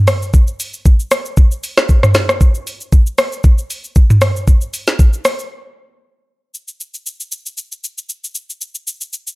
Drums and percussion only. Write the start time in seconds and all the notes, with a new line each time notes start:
0.07 cross-stick, open hi-hat, shaker
0.22 shaker
0.34 kick, shaker
0.47 shaker
0.60 open hi-hat, shaker
0.74 shaker
0.86 kick, shaker
1.00 shaker
1.11 cross-stick, open hi-hat, shaker
1.26 shaker
1.37 kick, shaker
1.51 shaker
1.64 open hi-hat, shaker
1.77 cross-stick, snare, shaker
1.89 kick, shaker
2.03 cross-stick, mid tom, shaker
2.14 cross-stick, snare, open hi-hat, shaker
2.29 cross-stick, shaker
2.41 kick, shaker
2.55 shaker
2.67 open hi-hat, shaker
2.81 shaker
2.92 kick, shaker
3.07 shaker
3.18 cross-stick, open hi-hat, shaker
3.32 shaker
3.44 kick, shaker
3.58 shaker
3.70 open hi-hat, shaker
3.84 shaker
3.96 kick, shaker
4.10 mid tom, shaker
4.21 cross-stick, open hi-hat, shaker
4.36 shaker
4.48 kick, shaker
4.61 shaker
4.74 open hi-hat, shaker
4.87 snare, shaker
4.99 kick, shaker
5.13 shaker
5.25 cross-stick, open hi-hat, shaker
5.39 shaker
6.54 shaker
6.68 shaker
6.81 shaker
6.94 shaker
7.06 shaker
7.20 shaker
7.32 shaker
7.46 shaker
7.58 shaker
7.72 shaker
7.84 shaker
7.98 shaker
8.09 shaker
8.24 shaker
8.35 shaker
8.50 shaker
8.61 shaker
8.75 shaker
8.87 shaker
9.01 shaker
9.13 shaker
9.27 shaker